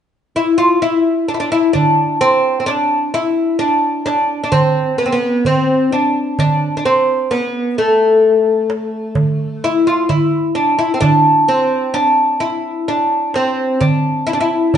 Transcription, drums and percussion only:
1.75 darbuka dum
2.68 darbuka tek
4.07 darbuka tek
4.52 darbuka dum
5.45 darbuka dum
6.39 darbuka dum
7.32 darbuka tek
8.70 darbuka tek
9.15 darbuka dum
10.10 darbuka dum
11.02 darbuka dum
11.95 darbuka tek
13.34 darbuka tek
13.81 darbuka dum
14.74 darbuka dum

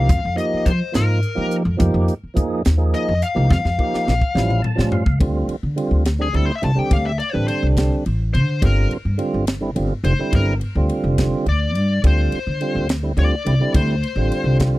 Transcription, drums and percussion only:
0.09 kick, closed hi-hat
0.38 closed hi-hat
0.66 kick, closed hi-hat
0.94 snare, closed hi-hat
1.23 closed hi-hat
1.51 closed hi-hat
1.80 kick, closed hi-hat
2.08 closed hi-hat
2.37 kick, closed hi-hat
2.65 snare, closed hi-hat
2.94 closed hi-hat
3.22 closed hi-hat
3.51 kick, snare
3.66 snare
3.79 kick
3.94 snare
4.08 snare
4.21 kick
4.37 snare
4.50 mid tom
4.64 mid tom
4.79 snare
4.92 floor tom
5.06 kick
5.21 kick, ride
5.49 ride
5.78 ride
6.05 snare, ride
6.34 ride
6.63 ride
6.91 kick, ride
7.20 ride
7.48 ride
7.77 kick, snare, ride
8.06 ride
8.35 ride
8.62 kick, ride
8.91 ride
9.19 ride
9.47 snare, ride
9.76 ride
10.04 ride
10.33 kick, ride
10.61 ride
10.89 ride
11.18 kick, snare, ride
11.46 ride
11.75 ride
12.04 kick, ride
12.32 ride
12.61 ride
12.89 snare, ride
13.17 ride
13.46 ride
13.74 kick, ride
14.03 ride
14.32 ride
14.60 kick, snare, ride

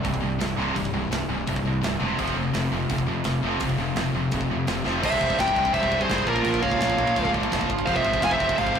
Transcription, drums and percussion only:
0.05 kick, open hi-hat
0.14 kick
0.40 snare, open hi-hat
0.76 kick, open hi-hat
0.85 kick
1.12 snare, open hi-hat
1.47 kick, open hi-hat
1.56 kick
1.83 snare, open hi-hat
2.19 kick, open hi-hat
2.28 kick
2.54 snare, open hi-hat
2.90 kick, open hi-hat
2.98 kick
3.24 snare, open hi-hat
3.60 kick, open hi-hat
3.69 kick
3.96 snare, open hi-hat
4.31 kick, open hi-hat
4.41 kick
4.67 snare, open hi-hat
4.86 snare
5.03 kick, crash
5.12 kick
5.21 kick
5.30 kick
5.39 kick, snare, crash
5.48 kick
5.56 kick
5.65 kick
5.74 kick, crash
5.83 kick
5.92 kick
6.01 kick
6.10 kick, snare, crash
6.18 kick
6.27 kick
6.36 kick
6.45 kick, crash
6.54 kick
6.63 kick
6.72 kick
6.81 kick, snare, crash
6.90 kick
6.98 kick
7.07 kick
7.16 kick, crash
7.25 kick
7.34 kick
7.43 kick
7.52 kick, snare, crash
7.61 kick
7.70 kick
7.79 kick
7.87 kick, crash
7.96 kick
8.05 kick
8.14 kick
8.22 kick, snare, crash
8.31 kick
8.40 kick
8.49 kick
8.58 kick, crash
8.67 kick
8.75 kick

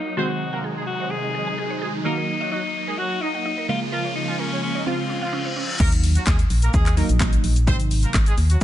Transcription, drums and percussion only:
5.80 kick, crash, shaker
5.92 closed hi-hat, shaker
6.04 open hi-hat, shaker
6.15 closed hi-hat, shaker
6.27 kick, snare, clap, shaker
6.39 closed hi-hat, shaker
6.50 open hi-hat, shaker
6.62 closed hi-hat, shaker
6.73 kick, shaker
6.86 clap, closed hi-hat, shaker
6.97 open hi-hat, shaker
7.09 closed hi-hat, shaker
7.20 kick, snare, clap, shaker
7.33 closed hi-hat, shaker
7.44 open hi-hat, shaker
7.56 closed hi-hat, shaker
7.67 kick, shaker
7.80 closed hi-hat, shaker
7.91 open hi-hat, shaker
8.03 closed hi-hat, shaker
8.14 kick, snare, clap, shaker
8.26 closed hi-hat, shaker
8.38 open hi-hat, shaker
8.50 closed hi-hat, shaker

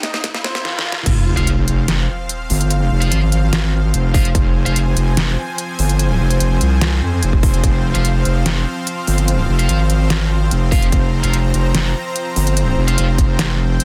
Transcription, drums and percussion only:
0.03 snare, closed hi-hat
0.14 snare
0.24 kick, snare, closed hi-hat
0.34 snare
0.44 snare
0.55 snare
0.65 snare
0.79 snare
0.92 snare
1.06 kick, closed hi-hat, crash
1.37 closed hi-hat
1.47 closed hi-hat
1.68 closed hi-hat
1.88 snare, closed hi-hat
2.29 closed hi-hat
2.50 open hi-hat
2.61 closed hi-hat
2.70 closed hi-hat
3.02 closed hi-hat
3.12 closed hi-hat
3.32 closed hi-hat
3.53 snare, closed hi-hat
3.94 closed hi-hat
4.14 kick, open hi-hat
4.25 closed hi-hat
4.35 kick, closed hi-hat
4.66 closed hi-hat
4.76 closed hi-hat
4.97 closed hi-hat
5.17 snare, closed hi-hat
5.58 closed hi-hat
5.79 open hi-hat
5.89 closed hi-hat
5.99 closed hi-hat
6.31 closed hi-hat
6.40 closed hi-hat
6.61 closed hi-hat
6.81 snare, closed hi-hat
7.23 closed hi-hat
7.33 kick
7.43 kick, open hi-hat
7.54 closed hi-hat
7.64 kick, closed hi-hat
7.95 closed hi-hat
8.05 closed hi-hat
8.25 closed hi-hat
8.46 snare, closed hi-hat
8.87 closed hi-hat
9.07 open hi-hat
9.18 closed hi-hat
9.28 closed hi-hat
9.59 closed hi-hat
9.69 closed hi-hat
9.90 closed hi-hat
10.10 snare, closed hi-hat
10.51 closed hi-hat
10.72 kick, open hi-hat
10.82 closed hi-hat
10.92 kick, closed hi-hat
11.24 closed hi-hat
11.34 closed hi-hat
11.54 closed hi-hat
11.75 snare, closed hi-hat
12.16 closed hi-hat
12.36 open hi-hat
12.47 closed hi-hat
12.57 closed hi-hat
12.88 closed hi-hat
12.98 closed hi-hat
13.18 kick, closed hi-hat
13.39 snare, closed hi-hat
13.80 closed hi-hat

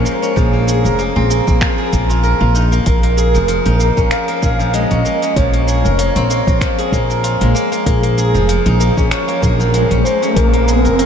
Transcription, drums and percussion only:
0.06 shaker
0.23 shaker
0.37 kick, shaker
0.68 shaker
0.86 shaker
1.00 shaker
1.31 shaker
1.47 kick, shaker
1.61 finger snap, kick, shaker
1.93 kick, shaker
2.10 shaker
2.24 shaker
2.55 shaker
2.73 shaker
2.86 kick, open hi-hat, shaker
3.03 open hi-hat
3.18 shaker
3.35 shaker
3.48 open hi-hat, shaker
3.66 open hi-hat
3.80 shaker
3.97 kick, shaker
4.11 finger snap, open hi-hat, shaker
4.28 open hi-hat
4.43 kick, shaker
4.60 shaker
4.74 open hi-hat, shaker
4.91 kick, open hi-hat
5.06 shaker
5.22 open hi-hat, shaker
5.36 kick, open hi-hat, shaker
5.54 open hi-hat
5.68 shaker
5.85 shaker
5.99 open hi-hat, shaker
6.16 open hi-hat
6.31 shaker
6.47 kick, shaker
6.61 finger snap, kick, open hi-hat, shaker
6.79 open hi-hat
6.92 kick, shaker
7.11 shaker
7.24 open hi-hat, shaker
7.41 open hi-hat
7.56 shaker
7.72 open hi-hat, shaker
7.86 kick, open hi-hat, shaker
8.03 open hi-hat
8.18 shaker
8.35 shaker
8.49 open hi-hat, shaker
8.66 open hi-hat
8.81 shaker
8.97 kick, shaker
9.11 finger snap, open hi-hat, shaker
9.29 open hi-hat
9.43 kick, shaker
9.61 shaker
9.74 open hi-hat, shaker
9.91 kick, open hi-hat
10.06 shaker
10.23 open hi-hat, shaker
10.36 kick, open hi-hat, shaker
10.54 open hi-hat
10.68 shaker
10.85 open hi-hat, shaker
10.99 open hi-hat, shaker

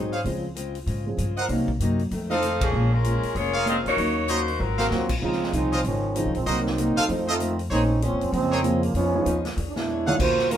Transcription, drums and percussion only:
0.13 open hi-hat
0.25 open hi-hat
0.56 closed hi-hat
0.75 open hi-hat
0.87 open hi-hat
1.18 closed hi-hat
1.37 open hi-hat
1.49 open hi-hat
1.68 kick
1.80 closed hi-hat
1.99 open hi-hat
2.11 open hi-hat
2.42 closed hi-hat
2.61 kick, ride
3.04 closed hi-hat
3.23 open hi-hat
3.35 open hi-hat
3.67 closed hi-hat
3.86 open hi-hat
3.98 open hi-hat
4.29 closed hi-hat
4.48 open hi-hat
4.79 snare
4.91 snare
5.09 kick, crash
5.32 snare
5.43 snare
5.53 closed hi-hat
5.72 open hi-hat
5.84 open hi-hat
6.16 closed hi-hat
6.35 open hi-hat
6.47 open hi-hat
6.66 snare
6.78 closed hi-hat
6.97 open hi-hat
7.09 open hi-hat
7.40 closed hi-hat
7.59 open hi-hat
7.71 open hi-hat
8.02 closed hi-hat
8.21 open hi-hat
8.33 open hi-hat
8.64 closed hi-hat
8.83 open hi-hat
8.95 open hi-hat
9.26 closed hi-hat
9.45 snare, open hi-hat
9.57 open hi-hat
9.76 snare
10.07 mid tom
10.20 kick, crash
10.39 snare
10.51 closed hi-hat

